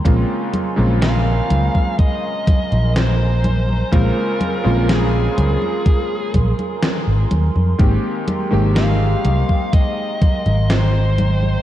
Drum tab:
HH |x-x-x-x-x-xxx-x-|x-x-x-x-x-xxx-x-|x-x-x-x-x-xxx-x-|
SD |----o-------o---|----o-------o---|----o-------o---|
CG |o-ooo-ooo-ooo-oo|o-ooo-ooo-ooo-oo|o-ooo-ooo-ooo-oo|
BD |o------oo-o-----|o-------o-o-----|o------oo-o-----|